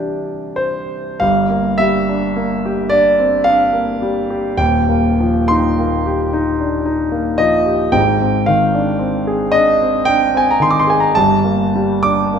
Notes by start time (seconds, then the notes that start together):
Already playing: C2 E3 D4 G4
0.56 C5
1.20 G1 G2 F5
1.50 A#3
1.78 G3 E5
2.09 D4
2.37 A#3
2.65 G4
2.89 D4 D5
3.19 C4
3.44 D4 F5
3.73 A#3
4.02 G3
4.30 G4
4.57 D#1 D#2 G5
4.89 A#3
5.20 F3
5.48 D#4 C6
5.79 A#3
6.06 G4
6.33 D#4
6.60 D4
6.86 D#4
7.12 A#3
7.38 F3 D#5
7.66 G4
7.92 G#1 G#2 G5
8.21 C4
8.46 D#3 F5
8.74 D4
8.99 C4
9.27 G#4
9.52 D4 D#5
9.82 C4
10.05 D4 G5
10.34 C4 G#5
10.51 A#5
10.60 D#3 C6
10.71 D6
10.80 C6
10.87 G#4 G#5
11.00 A#5
11.15 G1 G2 A5
11.44 A#3
11.75 G3
12.03 D4 D6
12.34 A#3